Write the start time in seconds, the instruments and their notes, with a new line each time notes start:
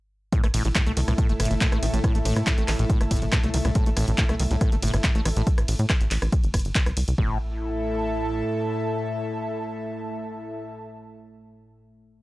0.33 ambient pad A2 A3, acid bass A2, analog synth pad E4, kick, closed hi-hat
0.44 analog synth bass A1, acid bass A3, cross-stick, closed hi-hat
0.54 analog synth bass A1, acid bass A2, analog synth pad A4, open hi-hat, ride
0.65 analog synth bass A1, acid bass A2, closed hi-hat
0.71 analog synth pad E5 A5
0.75 acid bass A2, kick, cross-stick, clap, closed hi-hat
0.87 analog synth bass C2, acid bass A3, closed hi-hat
0.97 analog synth bass C2, acid bass D#3, open hi-hat, ride
1.08 analog synth bass C2, acid bass A2, cross-stick, closed hi-hat
1.18 acid bass A2, kick, closed hi-hat
1.29 analog synth bass G1, acid bass A3, closed hi-hat
1.40 analog synth bass G1, acid bass A2, cross-stick, open hi-hat, ride
1.45 closed hi-hat
1.51 analog synth bass G1, acid bass A2, closed hi-hat
1.61 acid bass A2, kick, clap, closed hi-hat
1.72 analog synth bass A1, acid bass A3, cross-stick, closed hi-hat
1.82 analog synth bass A1, acid bass D#3, open hi-hat, ride
1.93 analog synth bass A1, acid bass A2, closed hi-hat
2.04 acid bass A2, kick, cross-stick, closed hi-hat
2.15 analog synth bass A1, acid bass A3, closed hi-hat
2.25 analog synth bass A1, acid bass A2, open hi-hat, ride
2.36 acid bass A2, analog synth bass A2, cross-stick, closed hi-hat
2.47 acid bass A2, kick, clap, closed hi-hat
2.58 analog synth bass A1, acid bass A3, closed hi-hat
2.68 analog synth bass A1, acid bass D#3, cross-stick, clap, open hi-hat, ride
2.79 analog synth bass A1, acid bass A2, closed hi-hat
2.90 acid bass A2, kick, closed hi-hat
3.01 analog synth bass G1, acid bass A3, cross-stick, closed hi-hat
3.11 analog synth bass G1, acid bass A2, kick, open hi-hat, ride
3.16 closed hi-hat
3.22 analog synth bass G1, acid bass A2, closed hi-hat
3.32 acid bass A2, kick, cross-stick, clap, closed hi-hat
3.43 analog synth bass C2, acid bass A3, closed hi-hat
3.54 analog synth bass C2, acid bass D#3, open hi-hat, ride
3.65 analog synth bass C2, acid bass A2, cross-stick, closed hi-hat
3.75 acid bass A2, kick, closed hi-hat
3.86 analog synth bass A1, acid bass A3, closed hi-hat
3.97 analog synth bass A1, acid bass A2, cross-stick, open hi-hat, ride
4.08 analog synth bass A1, acid bass A2, closed hi-hat
4.18 acid bass A2, kick, clap, closed hi-hat
4.29 analog synth bass C2, acid bass A3, cross-stick, closed hi-hat
4.40 analog synth bass C2, acid bass D#3, open hi-hat, ride
4.51 analog synth bass C2, acid bass A2, closed hi-hat
4.61 acid bass A2, kick, cross-stick, closed hi-hat
4.72 analog synth bass G1, acid bass A3, closed hi-hat
4.82 analog synth bass G1, acid bass A2, open hi-hat, ride
4.88 closed hi-hat
4.94 analog synth bass G1, acid bass A2, cross-stick, closed hi-hat
5.04 acid bass A2, kick, clap, closed hi-hat
5.15 analog synth bass A1, acid bass A3, closed hi-hat
5.25 analog synth bass A1, acid bass D#3, cross-stick, open hi-hat, ride
5.36 analog synth bass A1, acid bass A2, closed hi-hat
5.47 kick, closed hi-hat
5.58 analog synth bass A1, cross-stick, closed hi-hat
5.68 analog synth bass A1, open hi-hat, ride
5.79 analog synth bass A2, closed hi-hat
5.90 kick, cross-stick, clap, closed hi-hat
6.01 analog synth bass A1, closed hi-hat
6.11 analog synth bass A1, clap, open hi-hat, ride
6.22 analog synth bass A1, cross-stick, closed hi-hat
6.32 kick, closed hi-hat
6.44 analog synth bass G1, closed hi-hat
6.54 analog synth bass G1, kick, cross-stick, open hi-hat, ride
6.59 closed hi-hat
6.65 analog synth bass G1, closed hi-hat
6.75 kick, clap, closed hi-hat
6.86 analog synth bass C2, cross-stick, closed hi-hat
6.97 analog synth bass C2, open hi-hat, ride
7.08 analog synth bass C2, closed hi-hat
7.18 analog synth bass A1, acid bass A2, ambient pad A2 A3, analog synth pad E4, kick
7.25 analog synth pad A4
7.32 analog synth pad E5
7.38 analog synth pad A5